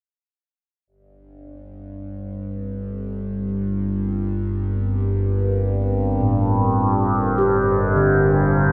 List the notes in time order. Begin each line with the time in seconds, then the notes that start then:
0.87 G1 G2 C4
2.30 A#4
2.44 D4
2.95 G4
6.20 A2
7.38 G4
7.96 D3